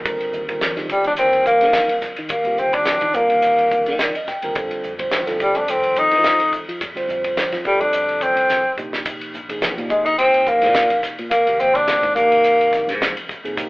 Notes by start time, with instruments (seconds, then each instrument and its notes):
0.05 fingered electric bass D#2, tine electric piano D3 G3 C4 F4 A#4, kick, hi-hat pedal, ride
0.20 muted fingered electric bass stroke, ride
0.33 fingered electric bass D#2, hi-hat pedal
0.47 tine electric piano D3 G3 C4 F4 A#4, kick, ride
0.61 snare, hi-hat pedal, ride, high conga
0.76 tine electric piano D3 G3 C4 F4 G4, fingered electric bass D#3, snare, ride
0.89 tenor saxophone G3, kick, hi-hat pedal
1.04 fingered electric bass D#2, tenor saxophone D4, ride
1.16 tine electric piano D3 G3 C4 F4 A#4, tenor saxophone C4, hi-hat pedal, ride
1.33 ride
1.46 tenor saxophone A#3, kick, hi-hat pedal, muted conga, high conga
1.61 fingered electric bass D#3, ride
1.73 snare, hi-hat pedal, ride, high conga
1.89 ride
2.01 kick, snare, hi-hat pedal, muted conga
2.16 fingered electric bass D#3, ride
2.29 fingered electric bass D#2, tenor saxophone A#3, kick, hi-hat pedal, ride, muted conga
2.45 tine electric piano D3 G3 C4 F4 G4, muted fingered electric bass stroke, ride
2.58 fingered electric bass D#2, tenor saxophone C4, hi-hat pedal
2.73 tenor saxophone D4, kick, ride
2.85 snare, hi-hat pedal, ride, high conga
3.01 fingered electric bass D#3, kick, ride
3.13 tine electric piano D3 G3 C4 F4 A#4, tenor saxophone A#3, kick, hi-hat pedal
3.30 fingered electric bass D#2, ride
3.42 hi-hat pedal, ride, muted conga
3.58 ride
3.71 kick, hi-hat pedal, muted conga, high conga
3.86 fingered electric bass D#3, ride
3.99 tine electric piano D5, snare, hi-hat pedal, ride, high conga
4.15 tine electric piano D#5, ride
4.27 tine electric piano G5, kick, snare, hi-hat pedal, muted conga
4.42 fingered electric bass D#2, tine electric piano D3 G3 C4 F4 A#4, ride
4.55 fingered electric bass F2, tine electric piano D3 G3 C4 F4 A4, kick, hi-hat pedal, ride
4.71 muted fingered electric bass stroke, ride
4.83 fingered electric bass F2, hi-hat pedal
4.98 tine electric piano D3 G3 C4 F4 C5, kick, ride
5.11 snare, hi-hat pedal, ride, high conga
5.26 tine electric piano D3 G3 C4 F4 A4, fingered electric bass F3, snare, ride
5.40 tenor saxophone G3, kick, hi-hat pedal
5.55 fingered electric bass F2, tenor saxophone D4, ride
5.68 tine electric piano D#3 G3 C4 F4 A4, tenor saxophone C4, hi-hat pedal, ride, muted conga
5.83 ride
5.96 tenor saxophone D#4, kick, hi-hat pedal, muted conga, high conga
6.11 fingered electric bass F3, ride
6.24 snare, hi-hat pedal, ride, high conga
6.40 ride
6.53 kick, hi-hat pedal, muted conga
6.69 fingered electric bass F3, ride
6.81 fingered electric bass F2, kick, hi-hat pedal, ride, muted conga
6.94 tine electric piano D3 G3 C4 F4 C5, muted fingered electric bass stroke, ride
7.09 fingered electric bass F2, hi-hat pedal
7.24 kick, ride
7.37 snare, hi-hat pedal, ride, high conga
7.52 fingered electric bass F3, kick, snare, ride
7.64 tine electric piano D3 G3 C4 F4 A4, tenor saxophone G3, kick, hi-hat pedal
7.80 fingered electric bass F2, tenor saxophone D4, ride
7.93 hi-hat pedal, ride, muted conga
8.09 ride
8.21 tenor saxophone C4, kick, hi-hat pedal, muted conga, high conga
8.36 fingered electric bass C2, ride
8.49 snare, hi-hat pedal, high conga
8.77 fingered electric bass A#1, tine electric piano C3 F3 A#3 D#4 G4, kick, hi-hat pedal, muted conga
8.93 snare
9.05 kick, hi-hat pedal, ride, muted conga
9.21 muted fingered electric bass stroke, ride
9.34 fingered electric bass A#1, hi-hat pedal
9.49 tine electric piano C3 F3 A#3 D#4 G#4, kick, ride
9.62 snare, hi-hat pedal, ride, high conga
9.77 fingered electric bass A#2, tine electric piano C3 F3 A#3 D#4 G4, ride
9.90 tenor saxophone G#3, kick, hi-hat pedal
10.06 fingered electric bass A#1, tenor saxophone D#4, ride
10.18 tine electric piano C3 F3 A#3 G4, tenor saxophone C4, hi-hat pedal, ride, muted conga
10.34 ride
10.47 tenor saxophone A#3, kick, hi-hat pedal, muted conga, high conga
10.62 fingered electric bass A#2, snare, ride
10.75 snare, hi-hat pedal, ride, high conga
10.90 ride
11.03 kick, snare, hi-hat pedal
11.18 fingered electric bass A#2, ride
11.31 fingered electric bass G#1, tenor saxophone A#3, kick, hi-hat pedal, ride
11.47 tine electric piano C3 D#3 F3 A#3 G4, muted fingered electric bass stroke, ride
11.60 fingered electric bass G#1, tenor saxophone C4, hi-hat pedal
11.75 tenor saxophone D4, kick, ride
11.88 snare, hi-hat pedal, ride, high conga
12.03 fingered electric bass G#2, kick, ride
12.15 tine electric piano C3 F3 A#3 D#4 G4, tenor saxophone A#3, kick, hi-hat pedal
12.32 fingered electric bass G#1, ride
12.44 hi-hat pedal, ride, muted conga
12.61 ride
12.73 kick, snare, hi-hat pedal, muted conga, high conga
12.88 fingered electric bass G#2, snare, ride
13.00 snare, hi-hat pedal, ride, high conga
13.17 ride
13.29 kick, hi-hat pedal, muted conga
13.44 fingered electric bass F2, tine electric piano C3 F3 A#3 D#4 G#4, ride
13.56 fingered electric bass A#1, tine electric piano C3 F3 A#3 D#4 G4, kick, hi-hat pedal, ride, muted conga